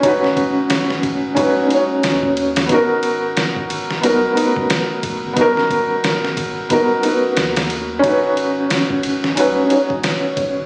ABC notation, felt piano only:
X:1
M:4/4
L:1/16
Q:"Swing 16ths" 1/4=90
K:G#m
V:1 name="Felt piano"
[CDFB]8 [CDFB] z [CDFc]6 | [B,DFA]8 [B,DFA] z [B,DFB]6 | [B,DFA]8 [B,DFA] z [B,DFB]6 | [CDFB]8 [CDFB] z [CDFc]6 |]